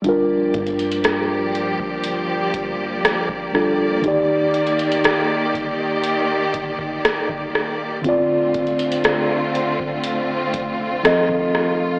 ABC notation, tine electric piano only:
X:1
M:4/4
L:1/8
Q:1/4=60
K:Gm
V:1 name="Tine electric piano"
[G,DFB]6- [G,DFB] [G,DFA] | [E,EGd]8 | [D,CFd]6 [F,CAe]2 |]